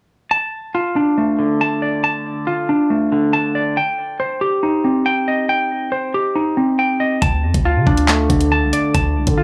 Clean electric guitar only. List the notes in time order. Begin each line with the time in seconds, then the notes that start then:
0.31 A5
0.75 F4
0.96 D4
1.18 A3
1.39 D3
1.61 A5
1.82 D5
2.04 A5
2.47 F4
2.69 D4
2.90 A3
3.12 D3
3.33 A5
3.55 D5
3.77 G5
4.20 C5
4.41 G4
4.63 D#4
4.84 C4
5.06 G5
5.28 D#5
5.49 G5
5.92 C5
6.14 G4
6.36 D#4
6.57 C4
6.79 G5
7.00 D#5
7.22 A5
7.65 F4
7.87 D4
8.08 A3
8.29 D3
8.52 A5
8.73 D5
8.95 A5
9.38 F4